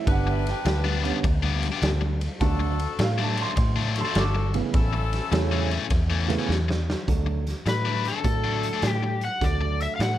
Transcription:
0.06 fingered electric bass G1, grand piano D3 G3 B3 D4, saxophone section D4 G4 B4, kick, ride
0.11 grand piano F#5
0.27 grand piano E5, muted overdriven electric guitar stroke
0.47 grand piano B4 G5, snare, ride
0.65 fingered electric bass D2, muted overdriven electric guitar stroke, snare, ride
0.84 overdriven electric guitar G2 G3 B3 D4
1.03 overdriven electric guitar G2 G3 B3 D4, grand piano D3 G3 B3 C#4, ride
1.24 fingered electric bass D2, muted overdriven electric guitar stroke, kick, ride
1.43 overdriven electric guitar G2 G3 B3 D4
1.63 snare, ride
1.72 overdriven electric guitar G2 G3 B3 D4
1.82 fingered electric bass D2, snare, ride
2.01 muted overdriven electric guitar stroke
2.21 ride
2.40 fingered electric bass D2, grand piano D3 F#3 A3 D4, saxophone section D4 F#4 A4, kick, snare, ride
2.60 muted overdriven electric guitar stroke
2.79 ride
2.99 fingered electric bass A2, muted overdriven electric guitar stroke, snare, ride
3.03 grand piano F5
3.18 overdriven electric guitar D3 F#3 A3 D4
3.23 grand piano A5
3.36 overdriven electric guitar D3 F#3 A3 D4, ride
3.42 grand piano C6
3.56 fingered electric bass A2, muted overdriven electric guitar stroke, kick, snare, ride
3.76 overdriven electric guitar D3 F#3 A3 D4
3.95 saxophone section D4 F#4 A4, snare, ride
4.01 grand piano C6
4.05 overdriven electric guitar D3 F#3 A3 D4
4.15 fingered electric bass G1, grand piano D6, snare, ride
4.35 muted overdriven electric guitar stroke
4.54 grand piano C#3 E3 A3 B3, ride
4.73 fingered electric bass A1, saxophone section C#4 E4 A4, kick, snare, ride
4.93 muted overdriven electric guitar stroke
5.13 snare, ride
5.32 fingered electric bass E2, grand piano C#3 E3 A3 C#4, muted overdriven electric guitar stroke, snare, ride
5.52 overdriven electric guitar A2 E3 A3 C#4
5.71 overdriven electric guitar A2 E3 A3 C#4, ride
5.90 fingered electric bass E2, muted overdriven electric guitar stroke, kick, snare, ride
6.10 overdriven electric guitar A2 E3 A3 C#4
6.28 grand piano C#3 E3 A3 B3, snare, ride
6.39 overdriven electric guitar A2 E3 A3 C#4
6.49 fingered electric bass E2, snare
6.69 muted overdriven electric guitar stroke, snare
6.90 snare
7.07 fingered electric bass D2, grand piano F#3 A3 D4 F#4 A4, kick, closed hi-hat
7.26 muted overdriven electric guitar stroke
7.47 snare, closed hi-hat
7.66 fingered electric bass A2, electric slide guitar B4, muted overdriven electric guitar stroke, snare, closed hi-hat
7.85 overdriven electric guitar D3 F#3 A3 D4
8.05 overdriven electric guitar D3 F#3 A3 D4, electric slide guitar A4, closed hi-hat
8.24 fingered electric bass A2, grand piano F#3 A3 D4 F#4 A4, muted overdriven electric guitar stroke, kick, closed hi-hat
8.44 overdriven electric guitar D3 F#3 A3 D4
8.63 closed hi-hat
8.73 overdriven electric guitar D3 F#3 A3 D4
8.82 fingered electric bass A2, snare, closed hi-hat
8.90 electric slide guitar G4
9.03 muted overdriven electric guitar stroke
9.21 electric slide guitar F#5, closed hi-hat
9.41 fingered electric bass D2, grand piano F#3 A3 D4 F#4 A4, electric slide guitar D5, kick, snare, closed hi-hat
9.61 muted overdriven electric guitar stroke
9.80 electric slide guitar E5, closed hi-hat
9.96 fingered electric bass A2, electric slide guitar F5
10.00 electric slide guitar F#5, muted overdriven electric guitar stroke, snare, closed hi-hat

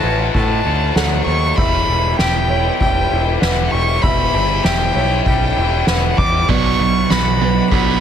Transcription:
Already playing: clean electric guitar D3 A3 F#4, string section A4 F#5, violin A5
0.03 picked electric bass A1, clean electric guitar C#4, felt piano B4, ride
0.34 picked electric bass A2, clean electric guitar A3, violin A5, kick, ride
0.65 picked electric bass D2, clean electric guitar C#4, ride
0.95 picked electric bass D2, clean electric guitar F#3, felt piano A4, violin F#5, snare, ride
1.25 picked electric bass D#2, clean electric guitar A3, violin C#6, ride
1.56 picked electric bass E1, clean electric guitar E2, string section E4 G4 B4, felt piano E5, violin B5, kick, crash
1.87 picked electric bass E1, clean electric guitar G3, ride
2.19 picked electric bass E1, clean electric guitar G4, violin G5, snare, ride
2.50 clean electric guitar E4, felt piano C#5, ride
2.80 picked electric bass E1, clean electric guitar G3, violin G5, kick, ride
3.11 picked electric bass E1, clean electric guitar E4, ride
3.41 picked electric bass E1, clean electric guitar E3, felt piano B4, violin F#5, snare, ride
3.71 picked electric bass E1, clean electric guitar G3, violin C#6, ride
4.02 picked electric bass E1, clean electric guitar E2, string section C#4, felt piano E5, violin B5, kick, ride
4.34 picked electric bass G1, clean electric guitar G3, ride
4.64 picked electric bass E1, clean electric guitar G4, violin G5, snare, ride
4.94 picked electric bass B1, clean electric guitar E4, felt piano C#5, ride
5.25 picked electric bass B1, clean electric guitar G3, violin G5, kick, ride
5.56 picked electric bass E1, clean electric guitar E4, ride
5.86 picked electric bass E1, clean electric guitar E3, felt piano B4, violin F#5, snare, ride
6.17 picked electric bass E2, clean electric guitar G3, violin D6, kick, ride
6.48 picked electric bass B1, clean electric guitar B2, distorted electric guitar B2 F#3 B3, string section D4 B4 F#5, felt piano D5, violin C#6, kick, crash
6.79 picked electric bass B1, distorted electric guitar B2 F#3, clean electric guitar B3, ride
7.10 picked electric bass B1, distorted electric guitar B2 F#3, clean electric guitar F#4, violin B5, snare, ride
7.40 distorted electric guitar B2 F#3, clean electric guitar D4, felt piano B4, ride
7.71 picked electric bass B1, distorted electric guitar B2 F#3 B3, clean electric guitar B3, violin B5, kick, ride

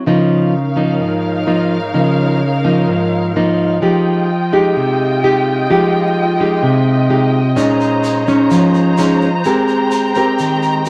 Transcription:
0.05 nylon-string guitar C#3 F3 A#3 D#4, string section D#4 A#4 C#5 F5
0.76 nylon-string guitar F3 A#3 D#4
1.00 nylon-string guitar G#2
1.47 nylon-string guitar F3 A#3 D#4
1.94 nylon-string guitar C#3 F3 A#3 D#4
2.64 nylon-string guitar F3 A#3 D#4
2.88 nylon-string guitar G#2
3.36 nylon-string guitar F3 A#3 D#4
3.82 nylon-string guitar F3 G#3 D#4 G4, string section F4 D#5 G5
4.53 nylon-string guitar G#3 D#4 G4
4.76 nylon-string guitar C3
5.24 nylon-string guitar G#3 D#4 G4
5.70 nylon-string guitar F3 G#3 D#4 G4
6.40 nylon-string guitar G#3 D#4 G4
6.63 nylon-string guitar C3
7.10 nylon-string guitar G#3 D#4 G4
7.56 nylon-string guitar A#2 G#3 C#4 D#4, string section C5 C#5 A#5, shaker
7.81 shaker
8.04 shaker
8.27 nylon-string guitar G#3 C#4 D#4, shaker
8.51 nylon-string guitar F3, shaker
8.74 shaker
8.98 nylon-string guitar G#3 C#4 D#4, shaker
9.21 shaker
9.43 string section G#3 G5, nylon-string guitar G#3 C4 G4 A#4, shaker
9.68 shaker
9.91 shaker
10.15 nylon-string guitar C4 G4 A#4, shaker
10.39 nylon-string guitar D#3, shaker
10.62 shaker
10.86 shaker

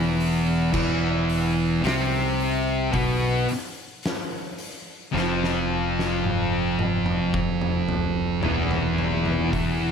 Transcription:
Already playing: picked electric bass E1, distorted electric guitar E2 E3
0.20 open hi-hat
0.71 picked electric bass E1, distorted electric guitar E2 E3, kick, crash
1.29 open hi-hat
1.81 picked electric bass C2, distorted electric guitar C3 C4, open hi-hat
1.87 snare
2.40 open hi-hat
2.91 picked electric bass B1, distorted electric guitar B2 B3, kick, open hi-hat
3.48 snare, open hi-hat
4.03 snare, open hi-hat
4.58 open hi-hat
5.12 picked electric bass F1, distorted electric guitar F2 F3
5.17 snare
5.44 snare
5.99 snare
6.24 high tom
6.79 high tom
7.06 mid tom
7.34 kick
7.61 mid tom
7.89 mid tom
8.42 picked electric bass E1, distorted electric guitar E2 E3, mid tom
8.71 floor tom
8.98 floor tom
9.26 floor tom
9.52 picked electric bass E1, distorted electric guitar E2 E3, kick, open hi-hat

